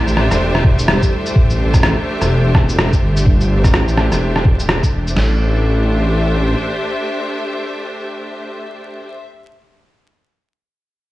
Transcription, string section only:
0.00 5.16 A3 medium
0.00 5.17 D4 medium
0.00 5.17 G4 medium
0.00 5.16 C5 medium
0.00 5.17 E5 medium
5.17 8.94 A3 medium
5.26 9.03 D4 medium
5.33 9.11 G4 medium
5.39 9.17 C5 medium
5.47 9.25 E5 medium

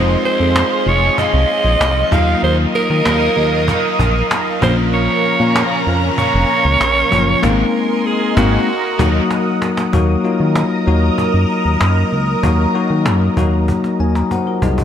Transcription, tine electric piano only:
0.00 0.81 G#3 medium
0.00 0.81 C4 medium
0.00 0.81 D#4 medium
0.00 0.81 F4 medium
2.11 3.12 F#3 medium
2.11 3.12 A#3 medium
2.11 3.12 D#4 medium
2.11 3.12 F4 medium
4.61 5.62 F3 medium
4.61 5.62 A#3 medium
4.61 5.62 C#4 medium
4.61 5.62 F4 medium
7.11 7.33 F3 medium
7.11 7.33 A#3 medium
7.11 7.34 C#4 medium
7.11 7.34 F4 medium
7.42 7.64 G#3 loud
7.42 7.64 A#3 loud
7.42 7.64 C4 loud
7.42 7.65 D#4 loud
8.36 8.58 G#3 loud
8.36 8.58 A#3 loud
8.36 8.58 C4 medium
8.36 8.58 D#4 loud
8.99 9.20 F#3 loud
8.99 9.21 A#3 loud
8.99 9.21 D#4 loud
8.99 9.21 F#4 medium
9.92 10.15 F#3 medium
9.92 10.15 A#3 medium
9.92 10.15 D#4 medium
9.92 10.15 F#4 loud
10.24 10.68 F#3 medium
10.24 10.68 A#3 medium
10.24 10.68 D#4 medium
10.24 10.69 F4 medium
10.87 11.74 F#3 medium
10.87 11.74 A#3 medium
10.87 11.75 D#4 medium
10.87 11.75 F#4 medium
12.43 12.65 F#3 medium
12.43 12.65 A#3 medium
12.43 12.65 D#4 medium
12.43 12.66 F#4 medium
12.74 13.18 F#3 medium
12.74 13.18 A#3 medium
12.74 13.18 D#4 medium
12.74 13.19 F#4 medium
13.37 14.24 F#3 medium
13.37 14.25 A#3 medium
13.37 14.00 D#4 medium
13.37 14.00 F#4 medium
14.00 14.14 G#5 medium
14.16 14.30 A#5 medium
14.32 14.46 F#4 soft
14.32 14.46 C5 medium
14.32 14.60 F#5 medium
14.47 14.62 F4 medium
14.47 14.62 A#4 medium
14.63 14.78 D#4 medium
14.63 14.77 G#4 medium
14.63 14.84 D#5 medium
14.78 14.84 C#4 soft
14.78 14.84 F#4 medium

